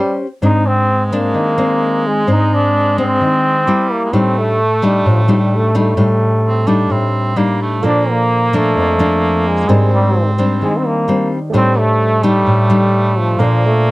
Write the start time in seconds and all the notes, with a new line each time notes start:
Already playing: G3 C#4 G4 C5
0.42 G#2 G#3 C4 D4 D#4
0.67 C4
1.06 C4
1.12 A#3 C4 D4
1.34 D#3
1.58 C4 D4
2.07 G#3
2.27 G#2 C4 D4 D#4
2.54 D4
2.98 C4 D4
3.21 D#3
3.66 G3 A#3 E4
3.92 A#3
4.04 G#3
4.13 A2 G3 A3 C4 D4 D#4
4.38 A3
4.82 G3 D4 D#4
5.06 A2 F3
5.25 F3 G3 D#4
5.29 D4
5.41 G3
5.56 A3
5.75 G3 D4 D#4
5.79 A3
5.97 A2 G3 D4 D#4
6.43 C4
6.67 G3 D4 D#4
6.90 A2 C4
7.36 G3 A#3 D4 D#4
7.62 A3
7.82 A#2 F3 A#3 D4 F4 A4 C5
7.86 D4 D5
8.11 A#3
8.53 F3 A3 D4
8.76 F2
9.00 F3 D4
9.47 G#3
9.68 G#2 G3 C4 D4 G4 A#4 C5 D5
9.94 G3
10.38 G3 C4 D4
10.62 D#3 G#3
10.78 C4
10.86 A#3
11.08 G3 C4 D4
11.50 A2 A3 G4 A4
11.54 G3 C4 D4 D#4 C5 D5
11.79 A3
12.23 G3 D4 D#4
12.47 A2
12.70 G3 D4 D#4
13.19 F3
13.39 A#2 A#3 D4 F4 A4 C5 D5
13.65 A3